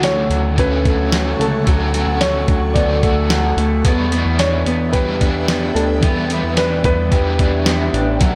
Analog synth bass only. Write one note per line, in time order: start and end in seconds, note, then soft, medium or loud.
0.00 0.28 D2 loud
0.30 1.35 D2 loud
1.39 1.65 C#2 medium
1.67 2.06 D2 loud
2.07 2.46 D2 medium
2.48 3.53 D2 medium
3.57 3.83 D2 medium
3.85 4.24 E2 loud
4.25 4.64 E2 loud
4.66 5.71 E2 medium
5.75 6.01 D2 medium
6.03 6.42 E2 loud
6.44 6.83 E2 medium
6.84 7.90 E2 loud
7.93 8.20 A1 medium
8.21 8.35 B1 loud